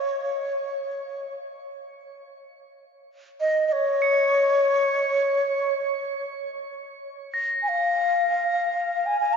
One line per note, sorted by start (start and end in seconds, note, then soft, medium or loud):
0.00 1.33 C#5 medium
0.00 1.73 F7 medium
3.40 3.67 D#5 medium
3.68 3.74 D#5 medium
3.72 6.25 C#5 medium
4.02 7.04 C#7 medium
7.34 9.37 A#6 soft
7.63 7.71 G#5 medium
7.69 9.07 F5 medium
9.06 9.20 G#5 medium
9.20 9.35 G#5 medium
9.33 9.37 A#5 medium